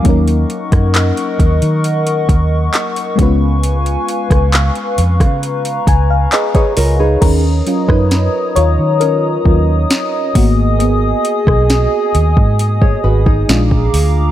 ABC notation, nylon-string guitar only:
X:1
M:4/4
L:1/16
Q:1/4=67
K:Ebm
V:1 name="Nylon-string guitar"
z16 | z12 z [Ad] [FB] [EA]- | [EA] z12 z3 | z8 z [Ad] [Gc] [EA]2 z3 |]